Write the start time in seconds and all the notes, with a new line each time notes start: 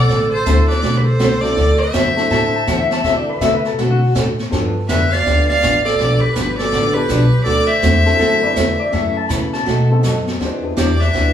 Already playing: A4 D5
0.09 A1 D3 A3 C4 F#4 A4, brush sweep, snare
0.30 A4 C5
0.45 D2 D3 A3 C4 D4 E4 F#4 A4, snare, hi-hat pedal
0.68 B4 D5, snare
0.82 B1 D3 A3 C4 F#4 A4, brush sweep, snare
0.97 G4 B4
1.04 A4 C5
1.19 C2 D3 A3 C4 F#4 A4, snare, hi-hat pedal
1.41 C4 D4 E4 F#4 A4 C5 D5, snare
1.56 D2 D3 A3 C4 F#4 A4, brush sweep, snare
1.78 C5 E5
1.93 F#2 D3 A3 C4 F#4 A4, snare, hi-hat pedal
2.16 C4 D4 E4 F#4 A4, snare
2.30 A2 D3 A3 C4 F#4 A4 A5, brush sweep, snare
2.56 A5
2.67 D3 E3 A3 C4 F#4 A4 F#5, snare, hi-hat pedal
2.81 E5
2.91 A5, snare
3.04 D3 A3 C4 D4 E4 F#4 A4 E5, brush sweep, snare
3.17 D5
3.30 B4
3.40 C3 D3 A3 C4 F#4 A4 E5, snare, hi-hat pedal
3.54 B4
3.65 A4, snare
3.77 B2 D3 A3 C4 F#4 A4, brush sweep, snare
3.91 F#4
4.15 A2 D3 A3 C4 F#4 A4, snare, hi-hat pedal
4.39 snare
4.50 G2 D3 F3 B3 D4 F4 G4 A4, brush sweep, snare
4.88 F2 D3 F3 B3 D4 G4 B4 E5, snare, hi-hat pedal
5.11 D5 F5, snare
5.25 D2 D3 F3 B3 D4 G4, brush sweep, snare
5.48 D5 F5, snare
5.62 A1 D3 F3 B3 D4 G4, snare, hi-hat pedal
5.85 A4 D5, snare
5.99 B1 D3 F3 B3 D4 G4, brush sweep, snare
6.20 G4 B4, muted upright bass stroke
6.35 G1 D3 F3 B3 D4 G4, snare, hi-hat pedal
6.58 A4 D5, snare
6.72 A1 D3 F3 B3 D4 G4, brush sweep, snare
6.94 B3 D4 F4 G4 A4 B4
7.09 B1 D3 F3 B3 D4 G4, snare, hi-hat pedal
7.33 muted upright bass stroke
7.44 D2 D3 A3 C4 F#4 A4 D5, brush sweep, snare
7.66 C5 E5
7.82 E2 D3 A3 C4 F#4 A4, snare, hi-hat pedal
8.05 C4 D4 E4 F#4 A4, snare
8.19 F#2 D3 A3 C4 F#4 A4, brush sweep, snare
8.42 C4 D4 E4 F#4 B4 D5
8.56 E2 D3 A3 C4 F#4 A4, snare, hi-hat pedal
8.80 D5
8.92 F#2 C#3 E3 A3 C#4 E4 F#4 A4 E5, brush sweep, snare
9.17 A5
9.29 C#3 E3 A3 C#4 F#4 B5, snare, hi-hat pedal
9.53 A5, snare
9.66 B2 F#3 A3 D#4 F#4, brush sweep, snare
9.90 B3 C4 D#4 F#4 A4
10.03 F#2 B2 F#3 A3 D#4 F#4, snare, hi-hat pedal
10.27 snare
10.40 E2 E3 B3 C4 D4 D#4 F4 G4 G#4 C5, brush sweep, snare
10.63 B3 D4 E4 G4 B4
10.77 E2 E3 B3 D4 G4 D5, snare, hi-hat pedal
11.00 B4 E5, snare
11.13 D2 E3 B3 D4 G4, brush sweep, snare